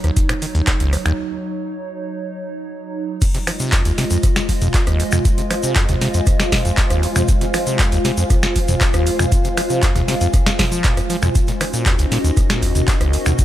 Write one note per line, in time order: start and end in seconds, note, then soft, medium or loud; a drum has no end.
0.00 3.18 F#3 medium
0.00 3.18 D#4 medium
0.00 3.18 C#5 medium
0.00 cross-stick soft
0.00 closed hi-hat soft
0.04 0.11 D#2 loud
0.17 0.21 D#2 medium
0.17 kick loud
0.17 closed hi-hat medium
0.17 shaker medium
0.29 0.34 A#2 medium
0.29 finger snap medium
0.29 cross-stick medium
0.29 closed hi-hat medium
0.42 0.46 D#3 medium
0.42 open hi-hat medium
0.42 shaker medium
0.55 0.62 D#2 loud
0.55 closed hi-hat soft
0.67 0.72 D#1 medium
0.67 kick loud
0.67 cross-stick soft
0.67 snare loud
0.67 clap loud
0.67 closed hi-hat medium
0.67 shaker medium
0.80 0.95 C#2 medium
0.80 closed hi-hat medium
0.93 0.97 D#2 loud
0.93 cross-stick medium
0.93 open hi-hat medium
0.93 shaker medium
1.06 1.13 D#2 loud
1.06 finger snap medium
1.06 closed hi-hat soft
3.22 3.26 F2 medium
3.22 11.31 G#3 medium
3.22 11.35 F4 medium
3.22 11.31 F4 medium
3.22 7.25 D#5 medium
3.22 kick loud
3.22 closed hi-hat medium
3.22 crash loud
3.22 shaker medium
3.34 3.39 C3 medium
3.34 13.15 C5 loud
3.34 snare soft
3.34 closed hi-hat medium
3.34 shaker soft
3.47 3.51 F3 medium
3.47 finger snap medium
3.47 cross-stick medium
3.47 open hi-hat loud
3.47 shaker medium
3.60 3.74 C3 medium
3.60 closed hi-hat soft
3.60 shaker medium
3.72 3.83 F2 medium
3.72 11.35 F5 medium
3.72 kick loud
3.72 snare loud
3.72 clap loud
3.72 closed hi-hat medium
3.72 shaker medium
3.85 3.92 D#2 loud
3.85 closed hi-hat medium
3.85 closed hi-hat soft
3.85 shaker soft
3.96 4.05 C3 loud
3.96 13.33 G#5 medium
3.96 snare soft
3.96 open hi-hat medium
3.96 shaker medium
4.10 4.18 F2 loud
4.10 closed hi-hat soft
4.10 shaker medium
4.23 4.28 F2 medium
4.23 kick loud
4.23 cross-stick soft
4.23 closed hi-hat medium
4.23 shaker medium
4.36 4.40 C3 medium
4.36 finger snap medium
4.36 snare medium
4.36 closed hi-hat medium
4.36 shaker soft
4.49 4.53 F3 medium
4.49 kick medium
4.49 open hi-hat loud
4.49 shaker medium
4.61 4.69 F2 loud
4.61 closed hi-hat soft
4.61 mid tom medium
4.61 shaker medium
4.74 4.78 F1 medium
4.74 kick loud
4.74 snare loud
4.74 clap loud
4.74 closed hi-hat medium
4.74 shaker medium
4.87 5.01 D#2 loud
4.87 cross-stick medium
4.87 closed hi-hat medium
4.87 shaker soft
5.00 5.04 F2 loud
5.00 open hi-hat medium
5.00 shaker medium
5.12 5.19 F2 loud
5.12 finger snap medium
5.12 closed hi-hat soft
5.12 mid tom medium
5.12 shaker medium
5.25 5.29 F2 medium
5.25 kick loud
5.25 closed hi-hat medium
5.25 shaker medium
5.38 5.42 C3 medium
5.38 closed hi-hat medium
5.38 shaker soft
5.51 5.55 F3 medium
5.51 finger snap medium
5.51 cross-stick medium
5.51 open hi-hat loud
5.51 shaker medium
5.63 5.78 C3 medium
5.63 closed hi-hat soft
5.63 shaker medium
5.76 5.87 F2 medium
5.76 kick loud
5.76 snare loud
5.76 clap loud
5.76 closed hi-hat medium
5.76 shaker medium
5.89 5.96 D#2 loud
5.89 snare medium
5.89 closed hi-hat medium
5.89 mid tom medium
5.89 shaker soft
6.01 6.08 C3 loud
6.01 snare soft
6.01 open hi-hat medium
6.01 shaker medium
6.14 6.21 F2 loud
6.14 closed hi-hat soft
6.14 shaker medium
6.26 6.31 F2 medium
6.26 kick loud
6.26 cross-stick soft
6.26 closed hi-hat medium
6.26 shaker medium
6.40 6.44 C3 medium
6.40 finger snap medium
6.40 snare medium
6.40 closed hi-hat medium
6.40 shaker soft
6.52 6.56 F3 medium
6.52 kick medium
6.52 snare medium
6.52 open hi-hat loud
6.52 mid tom medium
6.52 shaker medium
6.65 6.72 F2 loud
6.65 closed hi-hat soft
6.65 shaker medium
6.77 6.82 F1 medium
6.77 kick loud
6.77 snare loud
6.77 clap loud
6.77 closed hi-hat medium
6.77 shaker medium
6.90 7.05 D#2 loud
6.90 cross-stick medium
6.90 closed hi-hat medium
6.90 shaker soft
7.03 7.07 F2 loud
7.03 open hi-hat medium
7.03 shaker medium
7.16 7.23 F2 loud
7.16 finger snap medium
7.16 closed hi-hat soft
7.16 mid tom medium
7.16 shaker medium
7.28 7.33 F2 medium
7.28 11.31 F5 medium
7.28 kick loud
7.28 closed hi-hat medium
7.28 shaker medium
7.41 7.45 C3 medium
7.41 snare soft
7.41 closed hi-hat medium
7.41 shaker soft
7.54 7.58 F3 medium
7.54 finger snap medium
7.54 cross-stick medium
7.54 open hi-hat loud
7.54 shaker medium
7.67 7.81 C3 medium
7.67 closed hi-hat soft
7.67 shaker medium
7.79 7.90 F2 medium
7.79 kick loud
7.79 snare loud
7.79 clap loud
7.79 closed hi-hat medium
7.79 shaker medium
7.92 7.99 D#2 loud
7.92 closed hi-hat soft
7.92 closed hi-hat medium
7.92 shaker soft
8.05 8.12 C3 loud
8.05 snare soft
8.05 open hi-hat loud
8.05 shaker medium
8.17 8.24 F2 loud
8.17 closed hi-hat soft
8.17 shaker medium
8.30 8.34 F2 medium
8.30 kick loud
8.30 cross-stick soft
8.30 closed hi-hat medium
8.30 shaker medium
8.43 8.47 C3 medium
8.43 finger snap medium
8.43 snare medium
8.43 closed hi-hat medium
8.43 shaker soft
8.56 8.60 F3 medium
8.56 kick medium
8.56 open hi-hat loud
8.56 shaker medium
8.68 8.75 F2 loud
8.68 closed hi-hat soft
8.68 mid tom medium
8.68 shaker medium
8.81 8.85 F1 medium
8.81 kick loud
8.81 snare loud
8.81 clap loud
8.81 closed hi-hat medium
8.81 shaker medium
8.93 9.08 D#2 loud
8.93 cross-stick medium
8.93 closed hi-hat medium
8.93 shaker soft
9.06 9.11 F2 loud
9.06 open hi-hat loud
9.06 shaker medium
9.19 9.26 F2 loud
9.19 finger snap medium
9.19 closed hi-hat soft
9.19 mid tom medium
9.19 shaker medium
9.32 9.36 F2 medium
9.32 kick loud
9.32 closed hi-hat medium
9.32 shaker medium
9.45 9.49 C3 medium
9.45 closed hi-hat soft
9.45 shaker soft
9.57 9.61 F3 medium
9.57 finger snap medium
9.57 cross-stick medium
9.57 open hi-hat loud
9.57 shaker medium
9.70 9.84 C3 medium
9.70 closed hi-hat soft
9.70 shaker medium
9.82 9.93 F2 medium
9.82 kick loud
9.82 snare loud
9.82 clap loud
9.82 closed hi-hat medium
9.82 shaker medium
9.95 10.02 D#2 loud
9.95 snare medium
9.95 closed hi-hat medium
9.95 mid tom medium
9.95 shaker soft
10.08 10.15 C3 loud
10.08 snare soft
10.08 open hi-hat medium
10.08 shaker medium
10.21 10.28 F2 loud
10.21 closed hi-hat soft
10.21 shaker medium
10.33 10.38 F2 medium
10.33 kick loud
10.33 cross-stick soft
10.33 closed hi-hat medium
10.33 shaker medium
10.46 10.51 C3 medium
10.46 finger snap medium
10.46 snare medium
10.46 closed hi-hat medium
10.46 shaker soft
10.59 10.66 F3 loud
10.59 kick medium
10.59 snare medium
10.59 open hi-hat loud
10.59 mid tom medium
10.59 shaker medium
10.72 10.86 F3 loud
10.72 closed hi-hat soft
10.72 shaker medium
10.84 10.95 A#2 loud
10.84 kick loud
10.84 snare loud
10.84 clap loud
10.84 closed hi-hat medium
10.84 shaker medium
10.97 11.01 F2 medium
10.97 cross-stick medium
10.97 closed hi-hat soft
10.97 shaker soft
11.10 11.17 F3 loud
11.10 open hi-hat medium
11.10 shaker medium
11.22 11.30 F2 loud
11.22 finger snap medium
11.22 closed hi-hat soft
11.22 mid tom medium
11.22 shaker medium
11.35 11.39 D#2 medium
11.35 13.45 C#4 medium
11.35 13.45 D#4 medium
11.35 13.45 F#4 medium
11.35 13.45 D#5 medium
11.35 kick loud
11.35 closed hi-hat medium
11.35 shaker medium
11.47 11.52 A#2 medium
11.47 snare soft
11.47 closed hi-hat soft
11.47 shaker soft
11.61 11.65 D#3 medium
11.61 finger snap medium
11.61 cross-stick medium
11.61 open hi-hat loud
11.61 shaker medium
11.73 11.88 A#2 medium
11.73 closed hi-hat soft
11.73 shaker medium
11.85 11.97 D#2 medium
11.85 13.45 A#4 medium
11.85 kick loud
11.85 snare loud
11.85 clap loud
11.85 closed hi-hat medium
11.85 shaker medium
11.99 12.06 C#2 loud
11.99 closed hi-hat soft
11.99 closed hi-hat medium
11.99 shaker soft
12.12 12.19 A#2 loud
12.12 snare soft
12.12 open hi-hat medium
12.12 shaker medium
12.18 13.45 F#5 medium
12.24 12.31 D#2 loud
12.24 closed hi-hat soft
12.24 shaker medium
12.37 12.41 D#2 medium
12.37 kick loud
12.37 cross-stick soft
12.37 closed hi-hat medium
12.37 shaker medium
12.50 12.64 A#2 medium
12.50 finger snap medium
12.50 snare medium
12.50 closed hi-hat medium
12.50 shaker soft
12.62 12.73 D#2 medium
12.62 kick medium
12.62 open hi-hat loud
12.62 shaker medium
12.75 12.82 D#2 loud
12.75 closed hi-hat soft
12.75 mid tom medium
12.75 shaker medium
12.88 12.92 D#1 medium
12.88 kick loud
12.88 snare loud
12.88 clap loud
12.88 closed hi-hat medium
12.88 shaker medium
13.01 13.15 C#2 loud
13.01 cross-stick medium
13.01 closed hi-hat medium
13.01 shaker soft
13.13 13.17 D#2 loud
13.13 open hi-hat medium
13.13 shaker medium
13.26 13.33 D#2 loud
13.26 finger snap medium
13.26 closed hi-hat soft
13.26 mid tom medium
13.26 shaker medium
13.38 13.43 D#2 medium
13.38 kick loud
13.38 closed hi-hat medium
13.38 shaker medium